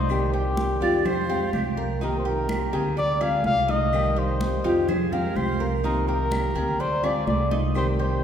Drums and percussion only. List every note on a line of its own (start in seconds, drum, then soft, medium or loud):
0.10 high conga soft
0.10 claves medium
0.34 high conga soft
0.57 high conga medium
1.05 high conga soft
1.05 low conga medium
1.05 claves medium
1.30 high conga soft
1.53 high conga medium
1.53 claves medium
1.77 high conga soft
2.01 high conga soft
2.25 high conga soft
2.49 high conga medium
2.49 claves medium
2.73 high conga soft
2.97 high conga soft
3.20 high conga soft
3.20 claves medium
3.44 high conga medium
3.69 high conga medium
3.93 high conga soft
3.93 claves medium
4.17 high conga soft
4.41 high conga loud
4.89 high conga soft
4.89 low conga medium
4.89 claves medium
5.13 high conga soft
5.13 low conga medium
5.36 high conga medium
5.36 claves medium
5.60 high conga soft
5.84 high conga soft
6.08 high conga soft
6.32 high conga loud
6.32 claves medium
6.56 high conga soft
6.80 high conga soft
7.03 high conga soft
7.03 claves medium
7.27 high conga medium
7.51 high conga medium
7.75 high conga soft
7.75 claves medium
7.99 high conga soft